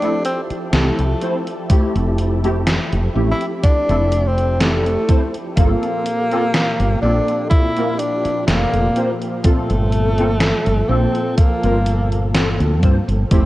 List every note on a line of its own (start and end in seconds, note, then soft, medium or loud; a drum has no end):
0.00 5.53 F3 medium
0.00 0.13 A3 medium
0.00 0.14 C4 medium
0.00 0.22 D4 loud
0.00 5.53 E4 medium
0.00 0.14 E4 medium
0.00 5.53 G4 medium
0.00 5.53 A4 medium
0.00 0.14 A4 medium
0.00 closed hi-hat soft
0.25 0.41 C4 medium
0.25 closed hi-hat medium
0.50 muted fretless electric bass stroke soft
0.50 closed hi-hat soft
0.73 0.89 C2 medium
0.73 1.16 A3 medium
0.73 1.44 A3 medium
0.73 1.16 C4 medium
0.73 1.16 E4 medium
0.73 1.17 G4 medium
0.73 snare loud
0.73 closed hi-hat medium
0.99 1.13 C2 medium
0.99 closed hi-hat soft
1.21 1.34 A3 medium
1.21 1.35 C4 medium
1.21 1.35 E4 medium
1.21 1.35 C5 medium
1.21 closed hi-hat medium
1.47 closed hi-hat soft
1.69 2.38 A3 medium
1.69 2.38 C4 medium
1.69 2.38 E4 medium
1.69 2.38 G4 medium
1.69 muted fretless electric bass stroke soft
1.69 kick loud
1.69 closed hi-hat medium
1.95 2.78 F1 medium
1.95 closed hi-hat soft
2.18 closed hi-hat medium
2.43 2.55 A3 loud
2.43 2.55 C4 medium
2.43 2.56 E4 medium
2.43 2.56 G4 loud
2.43 closed hi-hat soft
2.67 snare loud
2.67 closed hi-hat medium
2.93 3.07 F1 medium
2.93 closed hi-hat soft
3.14 3.32 A1 medium
3.14 3.83 A3 medium
3.14 3.83 C4 medium
3.14 3.83 E4 medium
3.14 3.83 G4 medium
3.31 3.46 E4 loud
3.41 closed hi-hat soft
3.64 4.29 D4 loud
3.64 kick loud
3.64 closed hi-hat medium
3.89 4.96 F1 medium
3.89 4.00 A3 medium
3.89 4.01 C4 medium
3.89 4.01 E4 medium
3.89 4.01 A4 medium
3.89 closed hi-hat soft
4.12 closed hi-hat medium
4.28 4.62 C4 loud
4.38 closed hi-hat soft
4.60 5.03 A3 medium
4.60 5.34 A3 loud
4.60 5.03 C4 medium
4.60 5.03 E4 medium
4.60 5.04 G4 medium
4.60 snare loud
4.60 closed hi-hat medium
4.86 closed hi-hat soft
5.08 5.21 A3 medium
5.08 5.22 C4 medium
5.08 5.22 E4 medium
5.08 5.22 C5 medium
5.08 kick loud
5.08 closed hi-hat medium
5.34 closed hi-hat soft
5.56 5.74 G1 medium
5.56 13.27 A#2 medium
5.56 13.27 F3 medium
5.56 6.98 A#3 loud
5.56 6.25 A#3 medium
5.56 6.25 C4 medium
5.56 6.25 F4 medium
5.56 9.40 G4 medium
5.56 6.26 A4 loud
5.56 kick loud
5.56 closed hi-hat medium
5.83 closed hi-hat soft
6.06 closed hi-hat medium
6.31 6.43 A#3 medium
6.31 6.43 C4 medium
6.31 6.43 F4 medium
6.31 6.43 A4 loud
6.31 closed hi-hat soft
6.54 snare loud
6.54 closed hi-hat medium
6.80 6.94 G1 medium
6.80 closed hi-hat soft
7.01 7.19 A#1 medium
7.01 7.70 A#3 medium
7.01 7.71 C4 medium
7.01 7.47 D4 loud
7.01 7.71 F4 medium
7.01 7.71 A4 medium
7.28 closed hi-hat soft
7.50 8.00 E4 loud
7.50 kick loud
7.50 closed hi-hat medium
7.76 7.88 A#3 medium
7.76 7.88 C4 medium
7.76 7.88 F4 medium
7.76 7.89 A#4 medium
7.76 closed hi-hat soft
7.98 8.46 D4 loud
7.98 closed hi-hat medium
8.25 muted fretless electric bass stroke soft
8.25 closed hi-hat soft
8.47 8.64 F1 medium
8.47 9.17 A#3 loud
8.47 8.90 A#3 medium
8.47 8.90 C4 medium
8.47 8.91 F4 medium
8.47 8.91 A4 medium
8.47 snare loud
8.47 closed hi-hat medium
8.73 8.88 F1 medium
8.73 closed hi-hat soft
8.96 9.09 A#3 medium
8.96 9.09 C4 medium
8.96 9.09 F4 medium
8.96 9.09 C5 medium
8.96 closed hi-hat medium
9.22 closed hi-hat soft
9.43 10.12 A#2 medium
9.43 10.90 A3 loud
9.43 10.12 C4 medium
9.43 10.12 F4 medium
9.43 13.27 A4 medium
9.43 10.12 A4 loud
9.43 muted fretless electric bass stroke soft
9.43 kick loud
9.43 closed hi-hat medium
9.70 10.52 G1 medium
9.70 closed hi-hat soft
9.92 closed hi-hat medium
10.18 10.30 A#3 loud
10.18 10.30 C4 medium
10.18 10.30 F4 medium
10.18 10.30 A4 loud
10.18 closed hi-hat soft
10.41 snare loud
10.41 closed hi-hat medium
10.66 10.81 G1 medium
10.66 closed hi-hat soft
10.89 11.06 A#1 medium
10.89 11.57 A#3 medium
10.89 11.37 C4 medium
10.89 11.57 C4 medium
10.89 11.58 F4 medium
10.89 11.58 A4 medium
11.15 closed hi-hat soft
11.37 12.30 A#3 medium
11.37 kick loud
11.37 closed hi-hat medium
11.63 12.59 G1 medium
11.63 11.75 A#3 medium
11.63 11.75 C4 medium
11.63 11.75 F4 medium
11.63 11.76 A#4 medium
11.63 closed hi-hat soft
11.86 closed hi-hat medium
12.12 closed hi-hat soft
12.34 12.77 A#3 medium
12.34 12.77 C4 medium
12.34 12.78 F4 medium
12.34 12.78 A4 medium
12.34 snare loud
12.34 closed hi-hat medium
12.60 12.83 D2 medium
12.60 closed hi-hat soft
12.82 12.99 G2 medium
12.82 12.96 A#3 medium
12.82 12.96 C4 medium
12.82 12.96 F4 medium
12.82 12.96 C5 medium
12.82 kick loud
12.82 closed hi-hat medium
13.08 13.23 G1 medium
13.08 closed hi-hat soft
13.31 13.46 F1 loud
13.31 13.46 F3 medium
13.31 13.46 A3 medium
13.31 13.46 C4 medium
13.31 13.46 E4 medium
13.31 13.46 G4 medium
13.31 13.46 G4 loud
13.31 13.46 A4 medium
13.31 13.46 E5 medium
13.31 kick loud
13.31 closed hi-hat medium